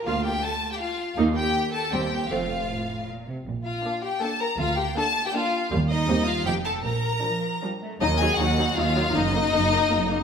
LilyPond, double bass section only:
\new Staff \with { instrumentName = "Double bass section" } { \clef bass \time 3/4 \key bes \major \tempo 4 = 159 d,4 r2 | ees,4 r4 ees,4 | f,,4 r2 | bes,,4 r2 |
d,4 r2 | ees,4 ees,4 f,,4 | bes,,4 r2 | \key ees \minor ees,4 ees,4 ees,4 |
ges,,4 ges,,4 ges,,4 | }